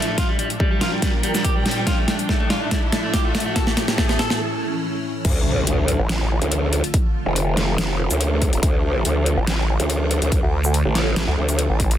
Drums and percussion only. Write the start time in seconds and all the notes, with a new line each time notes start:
0.02 closed hi-hat
0.18 kick, snare, closed hi-hat
0.39 closed hi-hat
0.50 closed hi-hat
0.60 kick
0.81 snare, closed hi-hat
1.02 kick, snare, closed hi-hat
1.23 closed hi-hat
1.35 snare, shaker
1.45 kick, closed hi-hat
1.66 snare, closed hi-hat
1.71 closed hi-hat
1.87 kick, snare, closed hi-hat
2.08 snare, closed hi-hat
2.19 closed hi-hat
2.29 kick, snare
2.50 snare, closed hi-hat
2.71 kick, snare, closed hi-hat
2.92 snare, closed hi-hat
3.14 kick, snare, closed hi-hat
3.35 snare, closed hi-hat
3.40 closed hi-hat
3.56 kick, snare, closed hi-hat
3.67 snare
3.77 snare, closed hi-hat
3.88 snare, closed hi-hat
3.98 kick, snare
4.09 snare
4.19 snare, closed hi-hat
4.30 snare
5.25 kick, closed hi-hat, crash
5.67 closed hi-hat
5.88 closed hi-hat
6.09 snare, closed hi-hat
6.42 closed hi-hat
6.52 closed hi-hat
6.73 closed hi-hat
6.84 closed hi-hat
6.94 kick, closed hi-hat
7.36 closed hi-hat
7.57 snare, closed hi-hat
7.78 snare, closed hi-hat
8.11 closed hi-hat, shaker
8.21 closed hi-hat
8.42 kick, closed hi-hat
8.53 closed hi-hat
8.63 kick, closed hi-hat
9.05 closed hi-hat
9.26 closed hi-hat
9.47 snare, closed hi-hat
9.80 closed hi-hat
9.90 closed hi-hat
10.11 closed hi-hat
10.22 closed hi-hat
10.32 kick, closed hi-hat
10.64 shaker
10.74 closed hi-hat
10.95 snare, closed hi-hat
11.16 snare, closed hi-hat
11.49 closed hi-hat, shaker
11.59 closed hi-hat
11.80 kick, closed hi-hat
11.91 closed hi-hat